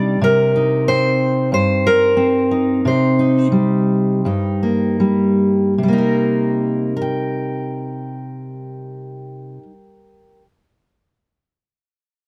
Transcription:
0, 0, Header, 1, 2, 480
1, 0, Start_track
1, 0, Key_signature, -3, "minor"
1, 0, Tempo, 650759
1, 167, Time_signature, 4, 2, 24, 8
1, 1608, Tempo, 692042
1, 3048, Tempo, 761421
1, 4008, Tempo, 786370
1, 7972, End_track
2, 0, Start_track
2, 0, Title_t, "Steel-string acoustic guitar"
2, 0, Program_c, 0, 25
2, 0, Note_on_c, 0, 48, 65
2, 0, Note_on_c, 0, 55, 54
2, 0, Note_on_c, 0, 62, 46
2, 0, Note_on_c, 0, 63, 42
2, 0, Note_on_c, 0, 74, 95
2, 134, Note_off_c, 0, 55, 0
2, 137, Note_off_c, 0, 63, 0
2, 139, Note_off_c, 0, 62, 0
2, 150, Note_off_c, 0, 48, 0
2, 158, Note_on_c, 0, 48, 69
2, 165, Note_off_c, 0, 74, 0
2, 175, Note_on_c, 0, 70, 81
2, 411, Note_on_c, 0, 63, 40
2, 650, Note_on_c, 0, 72, 85
2, 655, Note_on_c, 0, 60, 58
2, 1120, Note_off_c, 0, 48, 0
2, 1120, Note_on_c, 0, 43, 57
2, 1126, Note_off_c, 0, 72, 0
2, 1128, Note_off_c, 0, 70, 0
2, 1134, Note_on_c, 0, 72, 82
2, 1376, Note_on_c, 0, 70, 80
2, 1596, Note_off_c, 0, 60, 0
2, 1599, Note_on_c, 0, 60, 61
2, 1836, Note_off_c, 0, 63, 0
2, 1839, Note_on_c, 0, 63, 42
2, 1843, Note_off_c, 0, 72, 0
2, 2070, Note_off_c, 0, 43, 0
2, 2074, Note_on_c, 0, 48, 65
2, 2090, Note_on_c, 0, 72, 67
2, 2307, Note_off_c, 0, 70, 0
2, 2309, Note_off_c, 0, 63, 0
2, 2309, Note_on_c, 0, 63, 41
2, 2534, Note_off_c, 0, 60, 0
2, 2536, Note_on_c, 0, 55, 55
2, 3044, Note_off_c, 0, 63, 0
2, 3044, Note_on_c, 0, 43, 52
2, 3047, Note_off_c, 0, 48, 0
2, 3052, Note_on_c, 0, 63, 42
2, 3282, Note_on_c, 0, 58, 38
2, 3509, Note_off_c, 0, 55, 0
2, 3516, Note_on_c, 0, 55, 51
2, 3526, Note_off_c, 0, 72, 0
2, 3977, Note_off_c, 0, 55, 0
2, 3980, Note_off_c, 0, 63, 0
2, 4006, Note_off_c, 0, 43, 0
2, 4010, Note_on_c, 0, 48, 49
2, 4041, Note_on_c, 0, 55, 48
2, 4065, Note_off_c, 0, 58, 0
2, 4072, Note_on_c, 0, 58, 46
2, 4099, Note_on_c, 0, 63, 45
2, 4132, Note_on_c, 0, 70, 43
2, 4730, Note_off_c, 0, 58, 0
2, 4732, Note_off_c, 0, 70, 0
2, 4732, Note_on_c, 0, 70, 50
2, 4763, Note_on_c, 0, 79, 55
2, 6325, Note_off_c, 0, 48, 0
2, 6355, Note_off_c, 0, 55, 0
2, 6413, Note_off_c, 0, 63, 0
2, 6840, Note_off_c, 0, 70, 0
2, 6856, Note_off_c, 0, 79, 0
2, 7972, End_track
0, 0, End_of_file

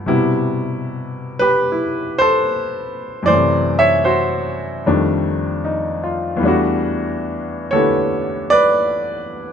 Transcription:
0, 0, Header, 1, 2, 480
1, 0, Start_track
1, 0, Tempo, 808625
1, 35, Time_signature, 4, 2, 24, 8
1, 1475, Tempo, 788436
1, 5762, End_track
2, 0, Start_track
2, 0, Title_t, "Grand piano"
2, 0, Program_c, 0, 0
2, 0, Control_c, 0, 64, 127
2, 37, Note_on_c, 0, 48, 52
2, 43, Control_c, 0, 64, 0
2, 44, Note_on_c, 0, 55, 45
2, 46, Note_on_c, 0, 47, 47
2, 47, Note_on_c, 0, 64, 62
2, 159, Control_c, 0, 64, 127
2, 828, Note_on_c, 0, 71, 87
2, 840, Note_on_c, 0, 67, 57
2, 1011, Note_off_c, 0, 64, 0
2, 1020, Note_on_c, 0, 64, 46
2, 1292, Note_off_c, 0, 67, 0
2, 1297, Note_on_c, 0, 72, 92
2, 1315, Note_on_c, 0, 69, 68
2, 1324, Note_off_c, 0, 71, 0
2, 1762, Note_off_c, 0, 72, 0
2, 1771, Note_off_c, 0, 69, 0
2, 1926, Note_on_c, 0, 42, 45
2, 1946, Note_on_c, 0, 74, 90
2, 1947, Note_on_c, 0, 52, 41
2, 1954, Note_on_c, 0, 72, 65
2, 1958, Note_off_c, 0, 48, 0
2, 1962, Note_off_c, 0, 55, 0
2, 1963, Note_off_c, 0, 47, 0
2, 1966, Note_off_c, 0, 64, 0
2, 1966, Control_c, 0, 64, 0
2, 1970, Note_on_c, 0, 57, 41
2, 1993, Note_on_c, 0, 48, 53
2, 2086, Control_c, 0, 64, 127
2, 2255, Note_off_c, 0, 72, 0
2, 2268, Note_on_c, 0, 76, 82
2, 2272, Note_on_c, 0, 73, 67
2, 2283, Note_off_c, 0, 74, 0
2, 2423, Note_off_c, 0, 73, 0
2, 2425, Note_on_c, 0, 72, 69
2, 2430, Note_on_c, 0, 66, 54
2, 2437, Note_off_c, 0, 76, 0
2, 2882, Note_off_c, 0, 72, 0
2, 2884, Note_off_c, 0, 66, 0
2, 2897, Note_off_c, 0, 42, 0
2, 2907, Note_off_c, 0, 52, 0
2, 2918, Note_off_c, 0, 57, 0
2, 2920, Control_c, 0, 64, 0
2, 2922, Note_on_c, 0, 51, 43
2, 2925, Note_on_c, 0, 55, 44
2, 2926, Note_on_c, 0, 41, 49
2, 2927, Note_on_c, 0, 57, 43
2, 2927, Note_on_c, 0, 62, 55
2, 2930, Note_off_c, 0, 48, 0
2, 3010, Control_c, 0, 64, 127
2, 3399, Note_on_c, 0, 63, 50
2, 3637, Note_on_c, 0, 65, 47
2, 3766, Note_off_c, 0, 63, 0
2, 3837, Note_on_c, 0, 40, 53
2, 3849, Note_on_c, 0, 52, 51
2, 3853, Note_off_c, 0, 55, 0
2, 3862, Note_on_c, 0, 55, 48
2, 3867, Note_off_c, 0, 57, 0
2, 3869, Note_off_c, 0, 51, 0
2, 3871, Note_off_c, 0, 41, 0
2, 3871, Note_off_c, 0, 62, 0
2, 3872, Control_c, 0, 64, 0
2, 3876, Note_on_c, 0, 57, 51
2, 3889, Note_on_c, 0, 62, 52
2, 3905, Note_on_c, 0, 66, 57
2, 3963, Note_off_c, 0, 65, 0
2, 3985, Control_c, 0, 64, 127
2, 4655, Note_on_c, 0, 73, 80
2, 4665, Note_on_c, 0, 50, 41
2, 4666, Note_off_c, 0, 57, 0
2, 4666, Note_on_c, 0, 69, 57
2, 4673, Note_on_c, 0, 59, 34
2, 4675, Note_on_c, 0, 57, 34
2, 4680, Note_on_c, 0, 64, 38
2, 4687, Note_on_c, 0, 67, 41
2, 5123, Note_off_c, 0, 73, 0
2, 5129, Note_off_c, 0, 69, 0
2, 5138, Note_on_c, 0, 74, 110
2, 5150, Note_on_c, 0, 71, 73
2, 5604, Note_off_c, 0, 74, 0
2, 5610, Note_off_c, 0, 71, 0
2, 5762, Note_off_c, 0, 40, 0
2, 5762, Note_off_c, 0, 50, 0
2, 5762, Note_off_c, 0, 52, 0
2, 5762, Note_off_c, 0, 55, 0
2, 5762, Note_off_c, 0, 57, 0
2, 5762, Note_off_c, 0, 59, 0
2, 5762, Note_off_c, 0, 62, 0
2, 5762, Note_off_c, 0, 64, 0
2, 5762, Note_off_c, 0, 66, 0
2, 5762, Note_off_c, 0, 67, 0
2, 5762, End_track
0, 0, End_of_file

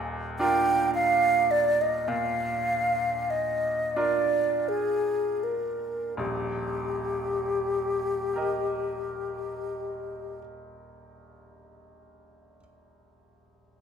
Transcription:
0, 0, Header, 1, 3, 480
1, 0, Start_track
1, 0, Key_signature, -3, "major"
1, 0, Tempo, 1109057
1, 899, Tempo, 1224490
1, 1379, Tempo, 1360544
1, 1859, Tempo, 1518987
1, 2339, Time_signature, 12, 3, 24, 8
1, 2339, Tempo, 1431981
1, 2819, Tempo, 1408451
1, 4931, End_track
2, 0, Start_track
2, 0, Title_t, "Flute"
2, 0, Program_c, 0, 73
2, 170, Note_on_c, 0, 79, 127
2, 391, Note_off_c, 0, 79, 0
2, 410, Note_on_c, 0, 77, 127
2, 654, Note_on_c, 0, 74, 117
2, 660, Note_off_c, 0, 77, 0
2, 784, Note_on_c, 0, 75, 101
2, 790, Note_off_c, 0, 74, 0
2, 902, Note_on_c, 0, 77, 123
2, 908, Note_off_c, 0, 75, 0
2, 1380, Note_on_c, 0, 75, 108
2, 1385, Note_off_c, 0, 77, 0
2, 1613, Note_on_c, 0, 74, 108
2, 1619, Note_off_c, 0, 75, 0
2, 1866, Note_on_c, 0, 68, 99
2, 1871, Note_off_c, 0, 74, 0
2, 2103, Note_on_c, 0, 70, 80
2, 2108, Note_off_c, 0, 68, 0
2, 2336, Note_off_c, 0, 70, 0
2, 2337, Note_on_c, 0, 67, 90
2, 3766, Note_off_c, 0, 67, 0
2, 4931, End_track
3, 0, Start_track
3, 0, Title_t, "Grand piano"
3, 0, Program_c, 1, 0
3, 0, Control_c, 1, 64, 127
3, 0, Note_on_c, 1, 27, 73
3, 0, Note_on_c, 1, 39, 81
3, 154, Note_off_c, 1, 27, 0
3, 157, Note_off_c, 1, 39, 0
3, 171, Note_on_c, 1, 62, 58
3, 174, Note_on_c, 1, 65, 64
3, 178, Note_on_c, 1, 70, 63
3, 881, Note_off_c, 1, 62, 0
3, 882, Note_off_c, 1, 65, 0
3, 884, Note_off_c, 1, 70, 0
3, 899, Note_on_c, 1, 46, 62
3, 1612, Note_on_c, 1, 62, 53
3, 1613, Note_on_c, 1, 65, 51
3, 1615, Note_on_c, 1, 70, 55
3, 2050, Note_off_c, 1, 46, 0
3, 2327, Note_off_c, 1, 62, 0
3, 2328, Note_off_c, 1, 65, 0
3, 2328, Note_off_c, 1, 70, 0
3, 2337, Note_on_c, 1, 34, 60
3, 2338, Note_on_c, 1, 27, 56
3, 2349, Control_c, 1, 64, 0
3, 2436, Control_c, 1, 64, 127
3, 3064, Note_on_c, 1, 67, 50
3, 3073, Note_on_c, 1, 70, 46
3, 3079, Note_on_c, 1, 75, 46
3, 3765, Note_off_c, 1, 34, 0
3, 3766, Note_off_c, 1, 27, 0
3, 4501, Note_off_c, 1, 67, 0
3, 4509, Note_off_c, 1, 70, 0
3, 4515, Note_off_c, 1, 75, 0
3, 4931, End_track
0, 0, End_of_file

